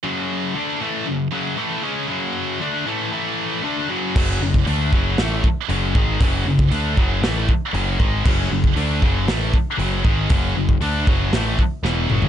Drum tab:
CC |----------------|----------------|x---------------|----------------|
HH |----------------|----------------|----o---o---o---|o---o---o---o---|
SD |----------------|----------------|--------o-------|--------o-------|
T2 |----------------|----------------|----------------|----------------|
FT |----------------|----------------|----------------|----------------|
BD |----------------|----------------|o--o--o---o---o-|o--o--o---o---o-|

CC |x---------------|----------------|
HH |----o---o---o---|o---o---o-------|
SD |--------o-------|--------o---o---|
T2 |----------------|--------------o-|
FT |----------------|---------------o|
BD |o--o--o---o---o-|o--o--o---o-----|